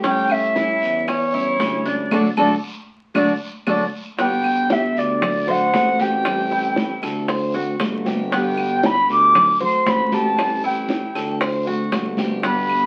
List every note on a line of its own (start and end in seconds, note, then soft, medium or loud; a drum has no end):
0.00 0.75 A2 medium
0.00 0.28 E3 medium
0.00 0.29 G3 medium
0.00 0.54 C#4 medium
0.00 high bongo medium
0.04 0.29 C#4 medium
0.04 0.28 E4 medium
0.04 0.33 G5 medium
0.04 high conga soft
0.04 long guiro medium
0.29 0.55 G3 soft
0.29 0.55 C#4 soft
0.29 0.54 E4 soft
0.29 1.09 E5 loud
0.29 high conga soft
0.29 claves medium
0.56 1.07 E3 medium
0.56 1.07 G3 medium
0.56 1.07 C#4 medium
0.56 1.06 E4 medium
0.56 1.08 E4 medium
0.56 high bongo medium
0.56 high conga medium
0.56 short guiro medium
0.82 1.56 E2 loud
0.82 high conga soft
0.82 short guiro medium
1.08 1.33 C#4 medium
1.08 1.89 C#5 medium
1.08 muted nylon-string guitar stroke medium
1.08 high bongo medium
1.08 high conga soft
1.08 long guiro medium
1.08 claves medium
1.33 1.59 G3 soft
1.33 1.59 C#4 soft
1.33 1.58 E4 soft
1.33 1.84 E4 medium
1.33 high conga soft
1.59 2.08 D2 medium
1.59 1.84 E3 medium
1.59 1.85 G3 medium
1.59 1.85 C#4 medium
1.59 1.85 E4 medium
1.59 high bongo medium
1.59 low bongo medium
1.59 high conga medium
1.59 short guiro medium
1.86 2.12 G3 soft
1.86 2.11 C#4 soft
1.86 2.10 D4 medium
1.86 2.11 E4 soft
1.86 2.13 D5 medium
1.86 high conga medium
1.86 short guiro medium
2.11 2.31 D2 medium
2.11 2.29 F#3 medium
2.11 2.28 A3 medium
2.11 2.28 D4 medium
2.11 2.28 F#4 medium
2.11 2.28 A4 medium
2.11 2.29 D5 medium
2.11 low bongo medium
2.11 high conga medium
2.11 long guiro medium
2.11 claves medium
2.37 2.57 D2 medium
2.37 2.54 F#3 medium
2.37 2.54 A3 medium
2.37 2.54 D4 medium
2.37 2.54 F#4 medium
2.37 2.54 A4 medium
2.37 2.55 D5 medium
2.37 low bongo medium
2.37 high conga medium
2.37 long guiro medium
2.37 claves medium
3.14 3.34 D2 medium
3.14 3.31 F#3 medium
3.14 3.31 A3 medium
3.14 3.31 D4 medium
3.14 3.32 D4 medium
3.14 3.32 F#4 medium
3.14 3.32 A4 medium
3.14 3.32 D5 medium
3.14 low bongo medium
3.14 high conga medium
3.14 long guiro medium
3.14 claves medium
3.67 3.86 D2 medium
3.67 3.84 F#3 medium
3.67 3.84 A3 medium
3.67 3.83 D4 medium
3.67 3.84 D4 medium
3.67 3.84 F#4 medium
3.67 3.84 A4 medium
3.67 3.85 D5 medium
3.67 low bongo medium
3.67 high conga medium
3.67 long guiro medium
3.67 claves medium
4.17 5.20 B2 medium
4.17 5.20 D3 medium
4.17 5.21 G3 medium
4.17 4.69 B3 medium
4.17 5.22 B3 medium
4.17 5.22 G4 medium
4.17 4.74 G5 loud
4.17 high bongo medium
4.17 high conga soft
4.17 long guiro medium
4.44 high conga soft
4.44 claves medium
4.70 4.96 G4 medium
4.70 5.00 E5 medium
4.70 high bongo medium
4.70 high conga medium
4.70 short guiro medium
4.96 5.70 D2 loud
4.96 5.52 D5 medium
4.96 high conga soft
4.96 short guiro medium
5.21 muted nylon-string guitar stroke medium
5.21 high bongo medium
5.21 high conga soft
5.21 low conga medium
5.21 long guiro medium
5.21 claves medium
5.47 5.73 A3 medium
5.47 5.73 C4 medium
5.47 5.72 F#4 medium
5.47 5.98 C5 medium
5.47 6.03 F#5 loud
5.47 high conga soft
5.47 low conga medium
5.73 6.96 A1 medium
5.73 5.98 D3 soft
5.73 5.99 A3 soft
5.73 5.99 C4 soft
5.73 5.98 F#4 medium
5.73 high bongo medium
5.73 low bongo medium
5.73 high conga medium
5.73 short guiro medium
5.99 6.25 A3 medium
5.99 6.25 C4 medium
5.99 6.24 F#4 medium
5.99 6.50 G4 medium
5.99 7.04 G5 loud
5.99 high conga medium
5.99 short guiro medium
6.24 7.27 E3 medium
6.24 7.28 G3 medium
6.24 7.28 C4 medium
6.24 7.29 E4 medium
6.24 high bongo medium
6.24 high conga soft
6.24 long guiro medium
6.24 claves medium
6.50 7.01 E4 medium
6.50 high bongo soft
6.50 high conga soft
6.76 high bongo medium
6.76 high conga medium
6.76 short guiro medium
7.02 7.76 D2 loud
7.02 7.28 A4 medium
7.02 high bongo soft
7.02 high conga soft
7.02 short guiro medium
7.02 claves medium
7.28 7.54 C5 medium
7.28 muted nylon-string guitar stroke medium
7.28 high bongo medium
7.28 high conga soft
7.28 long guiro medium
7.54 7.79 A3 medium
7.54 7.79 C4 medium
7.54 7.79 F#4 medium
7.54 8.04 F#4 medium
7.54 high conga soft
7.79 9.03 G1 medium
7.79 8.05 D3 medium
7.79 8.05 A3 soft
7.79 8.05 C4 medium
7.79 8.04 F#4 medium
7.79 high bongo medium
7.79 low bongo medium
7.79 high conga medium
7.79 short guiro medium
7.79 claves medium
8.05 8.31 A3 medium
8.05 8.31 C4 medium
8.05 8.30 F#4 medium
8.05 8.31 G4 medium
8.05 high bongo soft
8.05 high conga medium
8.05 short guiro medium
8.31 9.33 B2 medium
8.31 9.34 D3 medium
8.31 9.34 G3 medium
8.31 8.82 B3 medium
8.31 9.35 B3 medium
8.31 9.35 G4 medium
8.31 8.87 G5 medium
8.31 high bongo medium
8.31 high conga soft
8.31 long guiro medium
8.58 high conga soft
8.58 claves medium
8.83 9.09 G4 medium
8.83 9.10 B5 loud
8.83 high bongo medium
8.83 high conga medium
8.83 short guiro medium
9.09 9.56 D2 loud
9.09 9.58 D6 loud
9.09 high conga soft
9.09 short guiro medium
9.35 muted nylon-string guitar stroke medium
9.35 high bongo medium
9.35 high conga soft
9.35 low conga medium
9.35 long guiro medium
9.35 claves medium
9.60 9.85 A3 medium
9.60 9.85 C4 medium
9.60 9.85 F#4 medium
9.60 10.11 C5 medium
9.60 9.91 C6 medium
9.60 high conga soft
9.60 low conga medium
9.86 11.09 A1 medium
9.86 10.11 D3 soft
9.86 10.11 A3 soft
9.86 10.11 C4 medium
9.86 10.10 F#4 medium
9.86 10.06 B5 medium
9.86 high bongo medium
9.86 low bongo medium
9.86 high conga medium
9.86 short guiro medium
10.06 10.15 B5 medium
10.12 10.37 A3 medium
10.12 10.37 C4 medium
10.12 10.37 F#4 medium
10.12 10.62 G4 medium
10.12 10.64 A5 loud
10.12 high conga medium
10.12 short guiro medium
10.36 11.39 E3 medium
10.36 11.40 G3 medium
10.36 11.40 C4 medium
10.36 11.41 E4 medium
10.36 high bongo medium
10.36 high conga soft
10.36 long guiro medium
10.36 claves medium
10.63 11.14 E4 medium
10.63 11.38 G5 medium
10.63 high bongo soft
10.63 high conga soft
10.89 high bongo medium
10.89 high conga medium
10.89 short guiro medium
11.15 11.88 D2 loud
11.15 11.40 A4 medium
11.15 high bongo soft
11.15 high conga soft
11.15 short guiro medium
11.15 claves medium
11.40 11.66 C5 medium
11.40 muted nylon-string guitar stroke medium
11.40 high bongo medium
11.40 high conga soft
11.40 long guiro medium
11.66 11.91 A3 medium
11.66 11.92 C4 medium
11.66 11.91 F#4 medium
11.66 12.17 F#4 medium
11.66 high conga soft
11.91 12.86 G1 medium
11.91 12.17 D3 medium
11.91 12.17 A3 soft
11.91 12.17 C4 medium
11.91 12.16 F#4 medium
11.91 high bongo medium
11.91 low bongo medium
11.91 high conga medium
11.91 short guiro medium
11.91 claves medium
12.17 12.43 A3 medium
12.17 12.43 C4 medium
12.17 12.42 F#4 medium
12.17 12.43 G4 medium
12.17 high bongo soft
12.17 high conga medium
12.17 short guiro medium
12.42 12.86 B2 medium
12.42 12.86 D3 medium
12.42 12.86 G3 medium
12.42 12.86 B3 medium
12.42 12.86 G4 medium
12.42 12.86 B5 medium
12.42 high bongo medium
12.42 long guiro medium
12.69 high conga soft
12.69 claves medium